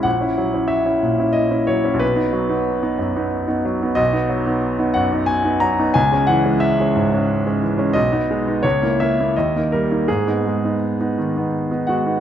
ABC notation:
X:1
M:3/4
L:1/16
Q:1/4=90
K:F#mix
V:1 name="Grand piano"
f4 e4 d2 c2 | B12 | [K:G#m] d6 f2 g2 a2 | g2 f2 e6 z2 |
d4 c2 e2 d2 A2 | G8 z2 [Ff]2 |]
V:2 name="Grand piano"
A,,, [CE] F, [CE]2 [CE] A,, [CE]2 [CE] F, [CE] | B,,, [B,D] F, [B,D]2 [B,D] F,, [B,D]2 [B,D] F, [B,D] | [K:G#m] B,,, [B,D] F, [B,D]2 [B,D] F,, [B,D]2 [B,D] F, [B,D] | C,, [G,C] E, [G,C]2 [G,C] G,, [G,C]2 [G,C] E, [G,C] |
B,,, [B,D] G, [B,D] C,, [A,E] A, [A,E] D,, [A,D] =G, [A,D] | G,, [B,D] G, [B,D]2 [B,D] D, [B,D]2 [B,D] G, [B,D] |]